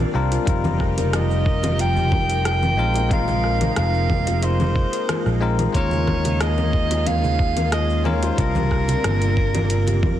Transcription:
Already playing: analog synth pad C3 A#3 D4 F4, tine electric piano D4 F4 A#4, soprano saxophone D5
0.14 fingered electric bass C2, tine electric piano G3 C4 D4 F4 A#4
0.32 kalimba F4, closed hi-hat, cabasa
0.45 fingered electric bass F1, analog synth pad F3 D#4 G4 A#4, tine electric piano G3 C4 D#4 F4, kalimba F4, kick, closed hi-hat, cabasa
0.49 tine electric piano A#4
0.64 kalimba G4, high conga, low conga, cabasa
0.80 kick, cross-stick
0.97 kalimba A#4, closed hi-hat, high bongo, low conga, cabasa
1.13 kalimba F4, soprano saxophone D#5, cross-stick, closed hi-hat, low conga, cabasa
1.30 high bongo, cabasa
1.46 kick
1.63 kalimba F4, closed hi-hat, high bongo, high conga, low conga, cabasa
1.78 kalimba F4, soprano saxophone G5, closed hi-hat, high conga, cabasa
1.96 kalimba G4, low conga, cabasa
2.12 kick, low conga
2.30 kalimba A#4, closed hi-hat, cabasa
2.45 kalimba F4, soprano saxophone G5, cross-stick, closed hi-hat, cabasa
2.63 low conga, cabasa
2.77 fingered electric bass A#1, tine electric piano G#3 C4 D#4 F4 A#4, analog synth pad G#3 A#3
2.94 kalimba F4, closed hi-hat, high bongo, cabasa
3.09 tine electric piano G#3 C4 D#4 F4, kalimba F4, soprano saxophone F5, kick, closed hi-hat, low conga, cabasa
3.13 tine electric piano A#4
3.28 kalimba G#4, high conga, low conga, cabasa
3.44 cross-stick
3.61 kalimba A#4, closed hi-hat, high bongo, low conga, cabasa
3.76 fingered electric bass F1, kalimba F4, soprano saxophone F5, cross-stick, closed hi-hat, cabasa
3.94 cabasa
4.10 kick, low conga
4.27 kalimba F4, closed hi-hat, high bongo, high conga, cabasa
4.43 kalimba F4, soprano saxophone C5, closed hi-hat, cabasa
4.60 kalimba G#4, low conga, cabasa
4.76 kick
4.93 kalimba A#4, closed hi-hat, cabasa
5.09 kalimba F4, cross-stick, closed hi-hat, low conga, cabasa
5.26 fingered electric bass A#1, cross-stick, cabasa
5.41 tine electric piano G#3 C4 D#4 F4 A#4
5.59 kalimba F4, closed hi-hat, low conga, cabasa
5.72 fingered electric bass D#2, analog synth pad D#3 C#4 F4 G#4, tine electric piano G#3 C#4 D#4 F4, kalimba F4, soprano saxophone C#5, kick, closed hi-hat, cabasa
5.77 tine electric piano A#4
5.91 kalimba G#4, high conga, low conga, cabasa
6.07 kick, cross-stick, low conga
6.25 kalimba A#4, closed hi-hat, high bongo, low conga, cabasa
6.41 kalimba F4, soprano saxophone D#5, cross-stick, closed hi-hat, cabasa
6.57 high bongo, low conga, cabasa
6.73 kick
6.91 kalimba F4, closed hi-hat, high bongo, high conga, cabasa
7.07 kalimba F4, soprano saxophone F5, closed hi-hat, high conga, low conga, cabasa
7.24 kalimba G#4, low conga, cabasa
7.39 kick
7.57 kalimba A#4, closed hi-hat, low conga, cabasa
7.72 kalimba F4, soprano saxophone D#5, cross-stick, closed hi-hat, cabasa
7.90 cabasa
8.04 tine electric piano G#3 C#4 D#4 F4 A#4, soprano saxophone C#5, low conga
8.23 kalimba F4, soprano saxophone C5, closed hi-hat, high bongo, cabasa
8.36 fingered electric bass C2, analog synth pad C3 A#3 D4, tine electric piano G3 C4 D4 F4 A#4, kalimba F4, soprano saxophone A#4, kick, closed hi-hat, cabasa
8.55 kalimba G4, high conga, low conga, cabasa
8.71 kick, cross-stick
8.88 kalimba A#4, closed hi-hat, high bongo, low conga, cabasa
9.04 fingered electric bass G1, kalimba F4, cross-stick, closed hi-hat, low conga, cabasa
9.21 closed hi-hat, high bongo, cabasa
9.37 kick
9.55 kalimba F4, closed hi-hat, high bongo, high conga, low conga, cabasa
9.70 kalimba F4, closed hi-hat, cabasa
9.87 kalimba G4, closed hi-hat, low conga, cabasa
10.03 fingered electric bass F2, kick, low conga

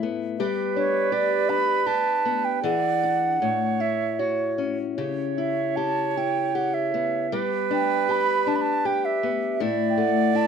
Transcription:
Already playing: steel-string acoustic guitar A2 A3 E4
0.03 steel-string acoustic guitar B3
0.38 steel-string acoustic guitar G3 G4, flute B4
0.76 steel-string acoustic guitar D4, flute C#5
1.12 steel-string acoustic guitar G4, flute D5
1.49 steel-string acoustic guitar D4, flute B5
1.87 steel-string acoustic guitar G4, flute A5
2.25 steel-string acoustic guitar B3
2.45 flute G5
2.62 steel-string acoustic guitar E3 G#4, flute D5 F#5
3.03 steel-string acoustic guitar D4
3.41 steel-string acoustic guitar A2, flute C#5
3.80 steel-string acoustic guitar E4, flute E5
4.19 steel-string acoustic guitar F#4, flute C#5
4.58 steel-string acoustic guitar C#4
4.95 steel-string acoustic guitar C#3 G4, flute C#5
5.38 steel-string acoustic guitar E4, flute E5
5.76 steel-string acoustic guitar G4, flute A5
6.11 flute A5
6.17 steel-string acoustic guitar E4, flute G5
6.55 steel-string acoustic guitar G4, flute F#5
6.74 flute E5
6.94 steel-string acoustic guitar B3
7.31 steel-string acoustic guitar G3 G4, flute B4
7.71 steel-string acoustic guitar D4, flute G5
8.09 steel-string acoustic guitar G4, flute B5
8.47 steel-string acoustic guitar D4, flute A5
8.56 flute B5
8.62 flute A5
8.85 steel-string acoustic guitar G4, flute G5
9.05 flute E5
9.23 steel-string acoustic guitar B3
9.53 flute E5
9.60 steel-string acoustic guitar A2 E4, flute D5
9.90 flute G5
9.98 steel-string acoustic guitar A3, flute F#5
10.35 steel-string acoustic guitar E4, flute A5

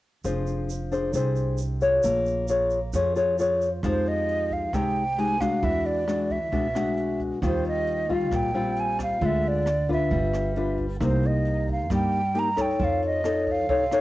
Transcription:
0.24 upright bass F1, nylon-string guitar F3 D4 G#4 C5, shaker
0.47 shaker
0.70 shaker
0.92 nylon-string guitar D4 G#4 C5, shaker
1.13 upright bass C2, nylon-string guitar C3 D4 G#4 C5, shaker
1.36 shaker
1.58 shaker
1.81 nylon-string guitar F4 G#4 C#5, shaker
2.03 upright bass A#1, nylon-string guitar A#3, shaker
2.26 shaker
2.48 nylon-string guitar F4 G#4 C#5, shaker
2.70 shaker
2.93 upright bass F2, nylon-string guitar F3 F4 G#4 C#5, shaker
3.16 nylon-string guitar F4 G#4 C#5, shaker
3.39 nylon-string guitar F4 G#4 C#5, shaker
3.61 shaker
3.83 upright bass F2, nylon-string guitar F3 G#3 D#4 G4, flute C5, kick, cross-stick, closed hi-hat
4.06 flute D#5, closed hi-hat
4.29 closed hi-hat
4.51 flute F5, kick, closed hi-hat
4.73 upright bass C2, nylon-string guitar C3 G#3 D#4 G4, flute G5, kick, cross-stick, closed hi-hat
4.96 closed hi-hat
5.18 nylon-string guitar G#3 D#4 G4, flute G#5, closed hi-hat
5.40 nylon-string guitar G#3 D4 F#4, flute F5, kick, cross-stick, closed hi-hat
5.63 upright bass E2, nylon-string guitar E3, flute E5, kick, closed hi-hat
5.86 flute D5, closed hi-hat
6.07 nylon-string guitar G#3 D4 F#4, cross-stick, closed hi-hat
6.30 flute E5, kick, closed hi-hat
6.52 upright bass B1, nylon-string guitar B2 G#3 D4 F#4, kick, closed hi-hat
6.75 nylon-string guitar G#3 D4 F#4, cross-stick, closed hi-hat
6.97 closed hi-hat
7.20 kick, closed hi-hat
7.42 upright bass D#2, nylon-string guitar D#3 G3 C4 F4, flute C5, kick, cross-stick, closed hi-hat
7.65 flute D#5, closed hi-hat
7.87 closed hi-hat
8.09 nylon-string guitar G3 C4 F4, kick, closed hi-hat
8.13 flute F5
8.31 upright bass A#1, nylon-string guitar A#2, kick, cross-stick, closed hi-hat
8.36 flute G5
8.54 nylon-string guitar G3 C4 F4, closed hi-hat
8.76 flute G#5, closed hi-hat
8.99 flute F5, kick, cross-stick, closed hi-hat
9.21 upright bass D2, nylon-string guitar D3 G#3 C4 F4, kick, closed hi-hat
9.26 flute E5
9.43 closed hi-hat
9.48 flute D5
9.66 cross-stick, closed hi-hat
9.89 nylon-string guitar D4 F4 B4, kick, closed hi-hat
9.93 flute E5
10.11 upright bass G1, nylon-string guitar G3, kick, closed hi-hat
10.33 cross-stick, closed hi-hat
10.56 nylon-string guitar D4 F4 B4, closed hi-hat
10.78 kick, closed hi-hat
11.00 upright bass C2, nylon-string guitar C3 A#3 D#4 G4, flute C5, kick, cross-stick, closed hi-hat
11.23 flute D#5, closed hi-hat
11.45 closed hi-hat
11.68 kick, closed hi-hat
11.72 flute F5
11.90 upright bass G2, nylon-string guitar G3 A#3 D#4 G4, kick, cross-stick, closed hi-hat
11.94 flute G5
12.12 closed hi-hat
12.34 nylon-string guitar A#3 D#4 G4, closed hi-hat
12.39 flute A#5
12.56 nylon-string guitar D#4 A4 C#5, kick, cross-stick, closed hi-hat
12.61 flute G5
12.79 upright bass F2, nylon-string guitar F3, kick, closed hi-hat
12.84 flute F5
13.02 flute D#5, closed hi-hat
13.24 nylon-string guitar D#4 A4 C#5, cross-stick, closed hi-hat
13.47 kick, closed hi-hat
13.51 flute F5
13.69 upright bass C2, nylon-string guitar C3 D#4 A4 C#5, kick, closed hi-hat
13.91 nylon-string guitar D#4 A4 C#5, cross-stick, closed hi-hat

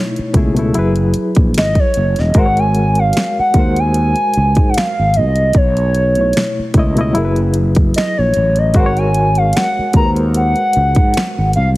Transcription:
Already playing: reed electric piano B2 A3 D#4 E4 C#5, soft synth lead C#5
0.16 muted fretless electric bass stroke, closed hi-hat
0.34 fretless electric bass C#2, reed electric piano B2 A3 E4, kick, closed hi-hat
0.39 reed electric piano G#4
0.55 reed electric piano B2 A3 E4, closed hi-hat
0.60 reed electric piano A4
0.74 fretless electric bass F#1, reed electric piano F#3 E4 G#4, closed hi-hat
0.79 reed electric piano B4
0.96 closed hi-hat
1.14 muted fretless electric bass stroke, closed hi-hat
1.35 fretless electric bass A#1, kick, closed hi-hat
1.54 fretless electric bass G#1, soft synth lead D#5, finger snap, snare, closed hi-hat
1.75 soft synth lead C#5, kick, closed hi-hat
1.94 fretless electric bass F#1, closed hi-hat
2.16 fretless electric bass E1, soft synth lead D#5, snare, closed hi-hat
2.34 fretless electric bass G#1, reed electric piano G#3 F#4 A#4, soft synth lead F#5, kick, closed hi-hat
2.39 reed electric piano C5
2.46 reed electric piano C#5
2.57 soft synth lead G#5, closed hi-hat
2.75 closed hi-hat
2.95 soft synth lead F5, closed hi-hat
3.13 snare, closed hi-hat
3.17 finger snap
3.39 soft synth lead F#5, muted fretless electric bass stroke
3.54 fretless electric bass D#2, reed electric piano G#3 F#4 A#4, kick, closed hi-hat
3.59 reed electric piano C5
3.76 soft synth lead G#5, closed hi-hat
3.94 closed hi-hat
4.16 closed hi-hat
4.34 fretless electric bass C#2, closed hi-hat
4.55 fretless electric bass G#2, kick, closed hi-hat
4.69 soft synth lead F#5
4.74 soft synth lead F5, finger snap, snare, closed hi-hat
4.99 fretless electric bass G#1
5.14 fretless electric bass C2, soft synth lead D#5, closed hi-hat
5.36 closed hi-hat
5.53 fretless electric bass B1, soft synth lead C#5, kick, closed hi-hat
5.77 closed hi-hat
5.95 closed hi-hat
6.15 reed electric piano B2 A3 E4, closed hi-hat
6.21 reed electric piano C#5
6.33 snare, closed hi-hat
6.37 finger snap
6.59 muted fretless electric bass stroke
6.74 fretless electric bass C#2, reed electric piano B2 A3 E4, kick, closed hi-hat
6.79 reed electric piano D#5
6.95 reed electric piano B2 A3 E4, closed hi-hat
7.01 reed electric piano D#5
7.13 fretless electric bass F#1, reed electric piano F#3 E4 G#4, closed hi-hat
7.18 reed electric piano A#4
7.25 reed electric piano B4
7.36 closed hi-hat
7.54 closed hi-hat
7.75 kick, closed hi-hat
7.94 soft synth lead D#5, finger snap, snare, closed hi-hat
8.18 fretless electric bass A#1, soft synth lead C#5
8.34 fretless electric bass A1, closed hi-hat
8.56 soft synth lead D#5, closed hi-hat
8.74 fretless electric bass G#1, reed electric piano G#3 F#4 A#4, soft synth lead F#5, kick, closed hi-hat
8.80 reed electric piano C5
8.86 reed electric piano C#5
8.97 soft synth lead G#5, closed hi-hat
9.14 closed hi-hat
9.35 soft synth lead F5, closed hi-hat
9.53 soft synth lead F#5, snare, closed hi-hat
9.57 finger snap
9.79 muted fretless electric bass stroke
9.93 fretless electric bass D#2, reed electric piano G#3 F#4 A#4, soft synth lead A#5, kick, closed hi-hat
9.99 reed electric piano B4
10.05 reed electric piano C5
10.16 closed hi-hat
10.34 soft synth lead F#5, closed hi-hat
10.56 closed hi-hat
10.73 fretless electric bass C#2, closed hi-hat
10.95 fretless electric bass G#2, kick, closed hi-hat
11.14 finger snap, snare, closed hi-hat
11.38 fretless electric bass G#1
11.53 fretless electric bass C2, soft synth lead F5, closed hi-hat

